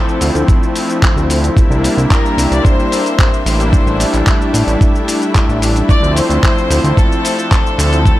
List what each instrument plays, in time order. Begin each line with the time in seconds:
Already playing: analog synth pad F3 A3 C4 E4, string section F3 D4 C5, violin section A4, downlifter
0.09 shaker
0.21 analog synth bass D2, open hi-hat, shaker
0.35 analog synth bass D2, closed hi-hat, shaker
0.48 kick, closed hi-hat, shaker
0.61 analog synth pad F3 A3 C4 E4, shaker
0.75 open hi-hat, shaker
0.90 closed hi-hat, shaker
1.02 kick, clap, closed hi-hat, shaker
1.16 analog synth bass D2, shaker
1.30 open hi-hat, shaker
1.44 closed hi-hat, shaker
1.56 analog synth bass C2, analog synth pad G3 A#3 D4 E4, string section C4 G4 A#4 E5, kick, closed hi-hat, shaker
1.70 analog synth bass C2, shaker
1.84 open hi-hat, shaker
1.97 analog synth bass C2, closed hi-hat, shaker
2.11 violin section A#4, kick, clap, closed hi-hat, shaker
2.26 shaker
2.37 analog synth bass C2, open hi-hat, shaker
2.51 analog synth bass C2, violin section D5, closed hi-hat, shaker
2.65 violin section C5, kick, closed hi-hat, shaker
2.80 shaker
2.91 analog synth pad G3 A#3 D4 A4, open hi-hat, shaker
3.06 closed hi-hat, shaker
3.19 kick, clap, closed hi-hat, shaker
3.34 shaker
3.45 analog synth bass A1, analog synth pad G3 A#3 D4 E4, violin section C5, open hi-hat, shaker
3.60 closed hi-hat, shaker
3.72 analog synth pad G3 A3 D4 E4, string section D4 G4 A4, kick, closed hi-hat, shaker
3.86 analog synth bass A1, shaker
4.00 open hi-hat, shaker
4.14 analog synth bass A1, clap, closed hi-hat, shaker
4.27 kick, clap, closed hi-hat, shaker
4.42 shaker
4.54 analog synth bass A1, open hi-hat, shaker
4.67 analog synth bass A1, closed hi-hat, shaker
4.81 kick, closed hi-hat, shaker
4.94 analog synth pad G3 A3 D4 E4, shaker
5.08 open hi-hat, shaker
5.22 closed hi-hat, shaker
5.35 kick, clap, closed hi-hat, shaker
5.49 analog synth bass A1, shaker
5.62 open hi-hat, shaker
5.76 closed hi-hat, shaker
5.88 analog synth bass D2, analog synth pad F3 A3 C4 E4, string section F3 C5, violin section D5, kick, closed hi-hat, shaker
6.02 analog synth bass D2, shaker
6.16 violin section C5, open hi-hat, shaker
6.30 analog synth bass D2, closed hi-hat, shaker
6.43 kick, clap, closed hi-hat, shaker
6.58 shaker
6.70 analog synth bass D2, open hi-hat, shaker
6.84 analog synth bass D2, closed hi-hat, shaker
6.97 violin section A4, kick, closed hi-hat, shaker
7.12 shaker
7.24 analog synth pad F3 A3 C4 G4, open hi-hat, shaker
7.39 closed hi-hat, shaker
7.51 kick, clap, closed hi-hat, shaker
7.66 shaker
7.78 analog synth bass D2, analog synth pad F3 A3 C4 E4, violin section A4, open hi-hat, shaker
7.93 closed hi-hat, shaker
8.05 analog synth pad F3 A3 C4 E4, kick, closed hi-hat, shaker